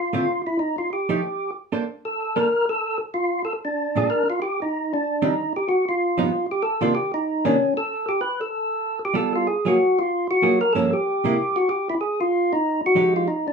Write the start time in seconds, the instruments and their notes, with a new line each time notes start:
Already playing: tonewheel organ F4
0.13 hollow-body jazz guitar D3 A3 C4 F4
0.47 tonewheel organ E4
0.59 tonewheel organ D#4
0.78 tonewheel organ F4
0.93 tonewheel organ G4
1.09 hollow-body jazz guitar F3 A3 D#4 G4
1.72 hollow-body jazz guitar A#3 D4 A4 C5
2.05 tonewheel organ A4
2.36 hollow-body jazz guitar A#3 D4 A4 C5, tonewheel organ A#4
2.69 tonewheel organ A4
3.14 tonewheel organ F4
3.45 tonewheel organ A4
3.65 tonewheel organ D4
3.96 hollow-body jazz guitar A#2 G#3 D4 F4, tonewheel organ G#4
4.10 tonewheel organ A#4
4.30 tonewheel organ F4
4.42 tonewheel organ G4
4.62 tonewheel organ D#4
4.94 tonewheel organ D4
5.22 hollow-body jazz guitar D#3 G3 C4 D4, tonewheel organ D#4
5.56 tonewheel organ G4
5.69 tonewheel organ F#4
5.89 tonewheel organ F4
6.18 hollow-body jazz guitar G2 F3 B3 D#4
6.51 tonewheel organ G4
6.62 tonewheel organ A4
6.81 hollow-body jazz guitar C3 D#3 A#3 D4, tonewheel organ F4
6.95 tonewheel organ G4
7.14 tonewheel organ D#4
7.45 hollow-body jazz guitar C3 D#3 A#3 D4, tonewheel organ C#4
7.77 tonewheel organ A4
8.09 tonewheel organ G4
8.21 tonewheel organ B4
8.41 tonewheel organ A4
9.05 tonewheel organ G4
9.14 hollow-body jazz guitar G3 B3 F4 A4, tonewheel organ A4
9.36 tonewheel organ F4
9.47 tonewheel organ G#4
9.65 hollow-body jazz guitar F#3 A#3 F4 G#4, tonewheel organ F#4
9.99 tonewheel organ F4
10.31 tonewheel organ F#4
10.42 hollow-body jazz guitar F#3 A#3 F4 G#4
10.61 tonewheel organ A#4
10.73 hollow-body jazz guitar G2 F3 A#3 C#4, tonewheel organ A4
10.93 tonewheel organ G4
11.24 hollow-body jazz guitar C3 G#3 A#3 E4
11.56 tonewheel organ F#4
11.69 tonewheel organ G4
11.90 tonewheel organ E4
12.01 tonewheel organ G#4
12.21 tonewheel organ F4
12.53 tonewheel organ D#4
12.86 tonewheel organ F#4
12.95 hollow-body jazz guitar F3 G#3 D#4 G4
13.16 tonewheel organ F4
13.28 tonewheel organ D#4
13.48 tonewheel organ D4